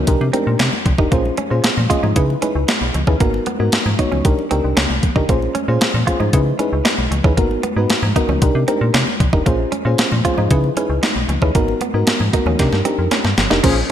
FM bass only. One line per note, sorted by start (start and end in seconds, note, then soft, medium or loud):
0.08 0.17 C2 loud
0.21 0.30 C3 medium
0.47 0.56 A#2 medium
0.60 0.69 C3 loud
0.86 0.95 C2 loud
0.99 1.08 F1 medium
1.12 1.31 A#1 medium
1.51 1.61 A#2 medium
1.64 1.70 A#2 soft
1.78 1.87 A#2 medium
2.03 2.13 G#2 medium
2.16 2.36 C#3 medium
2.55 2.65 C#2 medium
2.81 2.91 B1 medium
2.95 3.04 C#2 loud
3.07 3.17 D#2 medium
3.21 3.40 G#1 loud
3.60 3.69 G#2 medium
3.73 3.78 G#2 soft
3.86 3.95 G#2 loud
4.12 4.22 C#2 medium
4.25 4.35 C2 loud
4.52 4.61 C#2 medium
4.64 4.74 C2 medium
4.77 4.87 C#2 loud
4.90 5.00 C2 medium
5.16 5.26 C#2 medium
5.29 5.48 A#1 loud
5.68 5.78 A#2 loud
5.82 5.87 A#2 soft
5.94 6.04 A#2 loud
6.20 6.30 G#2 medium
6.33 6.53 C#3 loud
6.73 6.82 C#2 loud
6.98 7.08 B1 medium
7.11 7.21 C#2 loud
7.24 7.39 D#2 medium
7.38 7.57 G#1 medium
7.76 7.86 G#2 medium
7.90 7.95 G#2 soft
8.03 8.12 G#2 loud
8.29 8.39 C#2 medium
8.42 8.52 C2 loud
8.55 8.65 C3 loud
8.81 8.91 A#2 loud
8.94 9.04 C3 medium
9.20 9.30 C2 loud
9.33 9.43 F1 medium
9.47 9.66 A#1 medium
9.85 9.95 A#2 loud
9.99 10.04 A#2 soft
10.12 10.22 A#2 loud
10.38 10.48 G#2 medium
10.51 10.70 C#3 loud
10.90 10.99 C#2 loud
11.16 11.26 B1 medium
11.29 11.38 C#2 loud
11.42 11.52 D#2 medium
11.55 11.74 G#1 loud
11.94 12.04 G#2 medium
12.07 12.13 G#2 soft
12.20 12.30 G#2 medium
12.46 12.56 D#2 medium
12.60 12.69 C3 loud
12.73 12.82 G2 medium
12.99 13.08 F2 medium
13.24 13.34 G2 medium
13.38 13.47 G1 loud
13.51 13.61 F1 medium
13.64 13.83 A#1 loud